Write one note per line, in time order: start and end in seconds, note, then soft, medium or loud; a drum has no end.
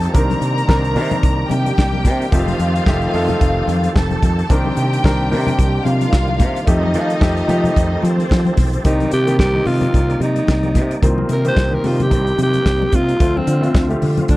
0.00 0.13 F3 medium
0.00 0.17 F3 medium
0.00 0.17 A3 medium
0.00 0.13 C4 medium
0.00 0.11 D#4 medium
0.00 0.17 D#4 medium
0.00 0.13 G4 medium
0.00 0.17 G4 loud
0.00 0.13 A4 medium
0.00 0.17 A4 medium
0.00 0.13 A5 medium
0.00 closed hi-hat soft
0.13 0.34 C2 loud
0.13 2.29 C3 medium
0.13 0.56 D#3 medium
0.13 8.81 D#3 medium
0.13 2.30 G3 medium
0.13 2.30 A#3 medium
0.13 0.57 C4 medium
0.13 2.30 D4 medium
0.13 0.57 D4 medium
0.13 0.57 A#4 loud
0.13 1.48 A#4 medium
0.13 1.48 A#5 loud
0.13 kick loud
0.13 closed hi-hat medium
0.13 muted conga soft
0.30 closed hi-hat soft
0.30 high conga medium
0.41 0.61 C3 medium
0.41 closed hi-hat medium
0.41 muted conga soft
0.58 closed hi-hat soft
0.67 0.97 C2 medium
0.67 0.90 D#3 medium
0.67 0.90 C4 medium
0.67 0.90 D4 medium
0.67 0.91 A#4 loud
0.67 kick loud
0.67 snare medium
0.84 closed hi-hat soft
0.95 1.15 C3 medium
0.95 1.78 D#3 medium
0.95 1.78 C4 medium
0.95 1.78 D4 medium
0.95 1.79 A#4 loud
0.95 open hi-hat medium
0.95 muted conga soft
1.11 closed hi-hat soft
1.11 high conga medium
1.11 low conga medium
1.23 1.43 C2 loud
1.23 kick loud
1.23 closed hi-hat medium
1.49 1.70 C3 loud
1.49 2.30 G4 medium
1.49 2.30 G5 medium
1.49 closed hi-hat medium
1.49 muted conga soft
1.49 high conga medium
1.66 closed hi-hat soft
1.66 high conga medium
1.78 2.06 C2 medium
1.78 kick loud
1.78 snare medium
1.78 muted conga soft
1.93 high conga medium
2.05 2.24 C3 medium
2.05 kick medium
2.05 closed hi-hat medium
2.05 muted conga soft
2.05 low conga medium
2.22 closed hi-hat soft
2.31 2.52 F1 loud
2.31 2.75 F3 medium
2.31 4.48 F3 medium
2.31 2.75 A3 medium
2.31 4.48 C4 medium
2.31 2.75 D#4 medium
2.31 3.92 F4 medium
2.31 4.48 G4 medium
2.31 2.75 G4 medium
2.31 4.48 A4 medium
2.31 3.92 F5 loud
2.31 kick loud
2.31 closed hi-hat medium
2.48 closed hi-hat soft
2.48 high conga medium
2.59 2.79 F2 medium
2.59 closed hi-hat medium
2.76 closed hi-hat medium
2.86 3.06 F1 medium
2.86 3.08 F3 medium
2.86 3.08 A3 medium
2.86 3.08 D#4 medium
2.86 3.09 G4 loud
2.86 kick loud
2.86 snare medium
3.02 closed hi-hat soft
3.13 3.33 F2 medium
3.13 3.96 F3 medium
3.13 3.96 A3 medium
3.13 3.96 D#4 medium
3.13 3.97 A4 loud
3.13 open hi-hat medium
3.13 muted conga soft
3.29 closed hi-hat soft
3.29 high conga medium
3.29 low conga medium
3.41 3.61 F1 medium
3.41 kick loud
3.41 closed hi-hat medium
3.67 3.87 F2 loud
3.67 closed hi-hat medium
3.67 muted conga soft
3.67 high conga medium
3.84 closed hi-hat soft
3.84 high conga soft
3.96 4.15 F1 loud
3.96 4.49 A4 medium
3.96 4.49 A5 medium
3.96 kick loud
3.96 snare loud
4.11 closed hi-hat soft
4.11 high conga medium
4.23 4.42 F2 medium
4.23 kick medium
4.23 closed hi-hat medium
4.23 muted conga soft
4.23 low conga medium
4.39 closed hi-hat soft
4.49 4.69 C2 loud
4.49 6.65 C3 medium
4.49 4.92 D#3 medium
4.49 6.66 G3 medium
4.49 6.65 A#3 medium
4.49 4.92 C4 medium
4.49 6.66 D4 medium
4.49 4.93 D4 medium
4.49 5.83 G4 medium
4.49 4.93 A#4 medium
4.49 5.83 G5 loud
4.49 kick loud
4.49 closed hi-hat medium
4.49 muted conga soft
4.65 high conga medium
4.76 4.96 C3 loud
4.76 closed hi-hat medium
4.76 muted conga soft
4.93 closed hi-hat soft
5.04 5.33 C2 loud
5.04 5.25 D#3 medium
5.04 5.26 C4 medium
5.04 5.26 D4 medium
5.04 5.26 A#4 loud
5.04 kick loud
5.04 snare loud
5.04 muted conga soft
5.31 5.51 C3 loud
5.31 6.13 D#3 medium
5.31 6.13 C4 medium
5.31 6.14 D4 medium
5.31 6.14 A#4 medium
5.31 open hi-hat medium
5.47 closed hi-hat soft
5.47 high conga medium
5.47 low conga medium
5.59 5.78 C2 loud
5.59 kick loud
5.59 closed hi-hat medium
5.85 6.05 C3 loud
5.85 6.66 F4 medium
5.85 6.66 F5 medium
5.85 closed hi-hat medium
5.85 muted conga soft
5.85 high conga medium
6.01 closed hi-hat soft
6.01 high conga medium
6.12 6.41 C2 loud
6.12 kick loud
6.12 snare loud
6.12 muted conga soft
6.28 high conga medium
6.40 6.59 C3 medium
6.40 kick loud
6.40 snare soft
6.40 closed hi-hat medium
6.40 low conga medium
6.56 closed hi-hat soft
6.66 6.96 F2 loud
6.66 7.10 F3 medium
6.66 8.84 F3 medium
6.66 7.10 A3 medium
6.66 8.84 C4 medium
6.66 8.00 D#4 medium
6.66 7.10 D#4 medium
6.66 7.10 G4 medium
6.66 8.84 G4 medium
6.66 8.84 A4 medium
6.66 8.00 D#5 medium
6.66 kick loud
6.66 closed hi-hat medium
6.66 muted conga soft
6.83 high conga medium
6.94 7.14 F3 loud
6.94 closed hi-hat medium
7.10 closed hi-hat soft
7.20 7.41 F2 medium
7.20 7.42 F3 medium
7.20 7.43 A3 medium
7.20 7.43 D#4 medium
7.20 7.43 G4 loud
7.20 kick loud
7.20 snare loud
7.37 closed hi-hat soft
7.47 8.30 F3 medium
7.47 7.68 F3 medium
7.47 8.31 A3 medium
7.47 8.31 D#4 medium
7.47 8.31 G4 loud
7.47 closed hi-hat medium
7.47 muted conga soft
7.47 low conga medium
7.64 closed hi-hat soft
7.64 high conga medium
7.64 low conga medium
7.76 7.96 F2 medium
7.76 kick medium
7.76 closed hi-hat medium
8.02 8.23 F3 loud
8.02 8.83 C4 medium
8.02 8.83 C5 medium
8.02 closed hi-hat medium
8.02 muted conga soft
8.02 high conga medium
8.18 closed hi-hat soft
8.18 high conga soft
8.30 8.51 F3 loud
8.30 kick loud
8.30 snare loud
8.30 muted conga soft
8.45 closed hi-hat soft
8.45 high conga medium
8.57 8.77 B1 medium
8.57 kick loud
8.57 snare soft
8.57 open hi-hat medium
8.57 low conga medium
8.73 closed hi-hat soft
8.84 9.05 C2 loud
8.84 13.17 C3 medium
8.84 9.16 D#3 medium
8.84 13.17 G3 medium
8.84 9.16 A#3 medium
8.84 13.17 A#3 medium
8.84 9.16 C4 medium
8.84 9.11 D#4 medium
8.84 13.17 D#4 medium
8.84 9.16 G4 medium
8.84 11.01 D5 medium
8.84 kick loud
8.84 closed hi-hat medium
8.84 muted conga soft
9.00 closed hi-hat soft
9.00 high conga medium
9.11 9.40 C3 medium
9.11 9.38 G4 loud
9.11 closed hi-hat medium
9.11 muted conga soft
9.26 9.47 D#3 medium
9.26 9.47 A#3 medium
9.26 9.47 C4 medium
9.26 9.48 G4 medium
9.26 closed hi-hat soft
9.39 9.59 C2 medium
9.39 9.68 G4 loud
9.39 kick loud
9.39 snare loud
9.39 muted conga soft
9.54 10.36 D#3 medium
9.54 10.36 A#3 medium
9.54 10.37 C4 medium
9.54 10.37 D#4 medium
9.66 9.87 C3 medium
9.66 10.21 F4 medium
9.66 open hi-hat medium
9.66 muted conga soft
9.66 low conga medium
9.81 closed hi-hat soft
9.81 high conga medium
9.81 low conga medium
9.93 10.13 C2 medium
9.93 kick loud
9.93 closed hi-hat medium
9.93 muted conga soft
10.10 closed hi-hat soft
10.20 10.40 C3 loud
10.20 11.00 D#4 medium
10.20 closed hi-hat medium
10.20 high conga medium
10.36 closed hi-hat soft
10.36 high conga medium
10.47 10.76 C2 loud
10.47 kick medium
10.47 snare loud
10.47 muted conga soft
10.63 closed hi-hat soft
10.63 high conga medium
10.75 10.95 C3 medium
10.75 kick medium
10.75 snare soft
10.75 closed hi-hat medium
10.75 muted conga soft
10.75 low conga medium
10.91 closed hi-hat soft
11.02 11.22 C2 loud
11.02 11.34 D#3 medium
11.02 11.34 A#3 medium
11.02 13.18 C4 medium
11.02 11.34 C4 medium
11.02 11.35 F4 medium
11.02 kick loud
11.02 closed hi-hat medium
11.18 high conga medium
11.29 11.49 C3 loud
11.29 11.45 A#4 medium
11.29 closed hi-hat medium
11.29 muted conga soft
11.44 11.65 D#3 medium
11.44 11.65 A#3 medium
11.44 11.65 C4 medium
11.44 11.65 G4 medium
11.44 11.76 C5 loud
11.44 closed hi-hat soft
11.57 11.76 C2 medium
11.57 kick loud
11.57 snare loud
11.71 12.54 D#3 medium
11.71 12.54 A#3 medium
11.71 12.54 C4 medium
11.71 12.54 G4 medium
11.71 11.88 A#4 medium
11.84 12.13 C3 medium
11.84 12.04 F4 medium
11.84 open hi-hat medium
11.84 muted conga soft
11.84 low conga medium
12.00 12.40 G4 loud
12.00 closed hi-hat soft
12.00 high conga medium
12.00 low conga medium
12.11 12.31 C2 loud
12.11 kick medium
12.11 closed hi-hat medium
12.27 closed hi-hat soft
12.38 12.58 C3 loud
12.38 closed hi-hat medium
12.38 muted conga soft
12.38 high conga medium
12.43 12.97 G4 loud
12.53 closed hi-hat soft
12.53 high conga soft
12.66 12.85 C2 loud
12.66 kick medium
12.66 snare loud
12.66 muted conga soft
12.82 high conga medium
12.92 13.12 C3 loud
12.92 13.39 F4 loud
12.92 kick loud
12.92 closed hi-hat medium
12.92 muted conga soft
12.92 low conga medium
13.09 closed hi-hat soft
13.19 13.40 D2 loud
13.19 13.51 D3 medium
13.19 14.37 F3 medium
13.19 13.51 A3 medium
13.19 14.37 C4 medium
13.19 13.52 C4 medium
13.19 14.37 F4 medium
13.19 13.52 F4 medium
13.19 kick loud
13.19 closed hi-hat medium
13.19 muted conga soft
13.37 13.91 C4 medium
13.37 high conga medium
13.47 13.67 D3 medium
13.47 closed hi-hat medium
13.47 muted conga soft
13.61 13.82 D3 medium
13.61 13.82 A3 medium
13.61 13.82 C4 medium
13.61 13.83 F4 medium
13.61 closed hi-hat soft
13.75 13.94 D2 medium
13.75 kick loud
13.75 snare loud
13.75 muted conga soft
13.89 14.37 D3 medium
13.89 14.37 A3 medium
13.89 14.37 C4 medium
13.89 14.37 G4 medium
13.89 closed hi-hat soft
14.02 14.21 D3 medium
14.02 open hi-hat medium
14.02 muted conga soft
14.02 low conga medium
14.17 closed hi-hat soft
14.17 high conga medium
14.17 low conga medium
14.28 14.37 D2 loud
14.28 14.37 D4 medium
14.28 kick loud
14.28 closed hi-hat medium
14.28 muted conga soft